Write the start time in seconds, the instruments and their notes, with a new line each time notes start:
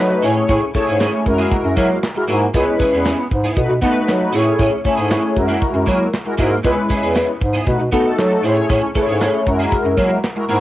Already playing: bass clarinet F#3, analog polysynth A3 D#4 F#4 B4
0.10 muted clean electric guitar stroke
0.22 bass clarinet A2, analog polysynth A3 E4 G#4 C#5, clean electric guitar C#4 E4 G#4, closed hi-hat
0.35 muted clean electric guitar stroke
0.48 bass clarinet A2, clean electric guitar C#4 E4 G#4, kick, closed hi-hat
0.61 muted clean electric guitar stroke
0.74 analog polysynth A3 E4 G#4 C#5, clean electric guitar C#4 E4 A4, kick, closed hi-hat
0.87 bass clarinet G#2, clean electric guitar C#4 E4 G#4
0.99 clean electric guitar C#4 E4 G#4, snare, clap, closed hi-hat
1.13 muted clean electric guitar stroke, closed hi-hat
1.26 bass clarinet F#2, analog polysynth G#3 E4 F#4 A#4, muted clean electric guitar stroke, kick, closed hi-hat
1.38 clean electric guitar A#3 E4 G#4
1.51 kick, closed hi-hat
1.64 bass clarinet F#2, muted clean electric guitar stroke
1.77 bass clarinet F#3, clean electric guitar A#3 E4 G#4, kick, closed hi-hat
1.89 muted clean electric guitar stroke
2.03 snare, clap, closed hi-hat
2.15 analog polysynth G#3 E4 F#4 A#4, muted clean electric guitar stroke
2.28 bass clarinet G#2, analog polysynth G#3 E4 F#4 A#4, clean electric guitar A#3 E4 G#4, closed hi-hat
2.41 muted clean electric guitar stroke, closed hi-hat
2.54 bass clarinet C#2, analog polysynth G#3 C#4 E4 B4, clean electric guitar B3 E4 G#4, kick, closed hi-hat
2.67 muted clean electric guitar stroke
2.79 clean electric guitar B3 E4 G#4, kick, closed hi-hat
2.92 bass clarinet E2, clean electric guitar B3 E4 G#4
3.05 clean electric guitar B3 E4 G#4, snare, clap, closed hi-hat
3.18 muted clean electric guitar stroke
3.30 bass clarinet G#2, muted clean electric guitar stroke, kick, closed hi-hat
3.44 clean electric guitar B3 E4 G#4
3.56 bass clarinet B2, analog polysynth A3 D#4 F#4 B4, kick, closed hi-hat
3.69 bass clarinet B2, muted clean electric guitar stroke
3.82 analog polysynth A3 D#4 F#4 B4, clean electric guitar B3 D#4 A4, bass clarinet B3, kick, closed hi-hat
3.95 muted clean electric guitar stroke
4.08 bass clarinet F#3, muted clean electric guitar stroke, snare, clap, closed hi-hat
4.21 muted clean electric guitar stroke
4.33 bass clarinet A2, analog polysynth A3 E4 G#4 C#5, clean electric guitar C#4 E4 G#4, closed hi-hat
4.46 muted clean electric guitar stroke, closed hi-hat
4.59 bass clarinet A2, clean electric guitar C#4 E4 G#4, kick, closed hi-hat
4.72 muted clean electric guitar stroke
4.84 analog polysynth A3 E4 G#4 C#5, clean electric guitar C#4 E4 A4, kick, closed hi-hat
4.97 bass clarinet G#2, clean electric guitar C#4 E4 G#4
5.10 clean electric guitar C#4 E4 G#4, snare, clap, closed hi-hat
5.23 muted clean electric guitar stroke
5.36 bass clarinet F#2, analog polysynth G#3 E4 F#4 A#4, muted clean electric guitar stroke, kick, closed hi-hat
5.48 clean electric guitar A#3 E4 G#4
5.61 muted clean electric guitar stroke, kick, closed hi-hat
5.74 bass clarinet F#2, muted clean electric guitar stroke
5.86 bass clarinet F#3, clean electric guitar A#3 E4 G#4, kick, closed hi-hat
6.00 muted clean electric guitar stroke
6.13 snare, clap, closed hi-hat
6.25 analog polysynth G#3 E4 F#4 A#4, muted clean electric guitar stroke
6.38 bass clarinet G#2, analog polysynth G#3 E4 F#4 A#4, clean electric guitar A#3 E4 G#4, kick, open hi-hat
6.51 muted clean electric guitar stroke
6.63 bass clarinet C#2, analog polysynth G#3 C#4 E4 B4, clean electric guitar B3 E4 G#4, kick, closed hi-hat
6.77 muted clean electric guitar stroke
6.89 clean electric guitar B3 E4 G#4, kick, closed hi-hat
7.02 bass clarinet E2, clean electric guitar B3 E4 G#4
7.15 clean electric guitar B3 E4 G#4, snare, clap, closed hi-hat
7.28 muted clean electric guitar stroke
7.41 bass clarinet G#2, muted clean electric guitar stroke, kick, closed hi-hat
7.53 clean electric guitar B3 E4 G#4
7.66 bass clarinet B2, analog polysynth A3 D#4 F#4 B4, kick, closed hi-hat
7.80 bass clarinet B2, muted clean electric guitar stroke
7.92 analog polysynth A3 D#4 F#4 A4, clean electric guitar B3 D#4 A4, bass clarinet B3, kick, closed hi-hat
8.05 muted clean electric guitar stroke
8.18 bass clarinet F#3, muted clean electric guitar stroke, snare, clap, closed hi-hat
8.31 muted clean electric guitar stroke
8.43 bass clarinet A2, analog polysynth A3 E4 G#4 C5, clean electric guitar C#4 E4 G#4, closed hi-hat
8.50 analog polysynth C#5
8.57 muted clean electric guitar stroke
8.69 bass clarinet A2, clean electric guitar C#4 E4 G#4, kick, closed hi-hat
8.82 muted clean electric guitar stroke
8.95 analog polysynth A3 E4 G#4 B4, clean electric guitar C#4 E4 A4, kick, closed hi-hat
9.02 analog polysynth C#5
9.08 bass clarinet G#2, clean electric guitar C#4 E4 G#4
9.20 clean electric guitar C#4 E4 G#4, snare, clap, closed hi-hat
9.34 muted clean electric guitar stroke
9.46 bass clarinet F#2, analog polysynth G#3 E4 F#4 A#4, muted clean electric guitar stroke, kick, closed hi-hat
9.59 clean electric guitar A#3 E4 G#4
9.72 kick, closed hi-hat
9.85 bass clarinet F#2, muted clean electric guitar stroke
9.97 bass clarinet F#3, clean electric guitar A#3 E4 G#4, kick, closed hi-hat
10.11 muted clean electric guitar stroke
10.24 snare, clap, closed hi-hat
10.36 analog polysynth G#3 E4 F#4 A#4, muted clean electric guitar stroke
10.48 bass clarinet G#2, analog polysynth G#3 E4 F#4 A#4, clean electric guitar A#3 E4 G#4, closed hi-hat